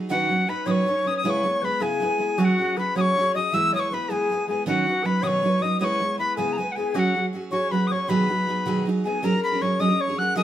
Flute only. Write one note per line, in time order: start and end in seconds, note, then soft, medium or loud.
0.08 0.45 F#4 medium
0.47 0.67 B4 medium
0.66 1.23 C#5 medium
1.24 1.63 C#5 medium
1.62 1.82 B4 medium
1.81 2.40 G#4 medium
2.38 2.79 F#4 medium
2.77 2.97 B4 medium
2.96 3.36 C#5 medium
3.35 3.54 D#5 medium
3.52 3.74 E5 medium
3.73 3.90 C#5 medium
3.91 4.10 B4 medium
4.09 4.47 G#4 medium
4.47 4.65 G#4 medium
4.66 5.05 F#4 medium
5.03 5.23 B4 medium
5.22 5.64 C#5 medium
5.62 5.79 D#5 medium
5.80 6.16 C#5 medium
6.19 6.39 B4 medium
6.37 6.58 G#4 medium
6.76 6.97 G#4 medium
6.95 7.27 F#4 medium
7.51 7.70 C#5 medium
7.71 7.93 B4 medium
7.91 8.01 C#5 medium
8.02 8.11 C#5 soft
8.09 8.87 B4 medium
9.05 9.22 G#4 medium
9.23 9.63 A#4 medium
9.62 9.82 C#5 medium
9.80 10.02 D#5 medium
10.00 10.17 C#5 medium
10.18 10.39 F#5 medium
10.37 10.43 D#5 medium